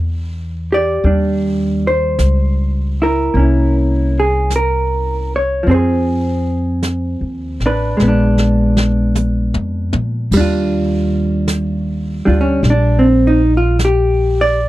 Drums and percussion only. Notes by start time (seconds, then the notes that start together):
1.03 brush sweep
2.19 brush sweep, snare, hi-hat pedal
3.35 brush sweep
4.50 brush sweep, snare, hi-hat pedal
5.66 brush sweep
6.83 brush sweep, snare, hi-hat pedal
7.60 snare
8.00 snare
8.38 snare
8.77 snare
9.15 hi-hat pedal, mid tom
9.54 mid tom
9.93 mid tom
10.31 brush sweep, kick, crash
11.48 brush sweep, snare, hi-hat pedal
12.64 brush sweep, snare
13.79 brush sweep, snare, hi-hat pedal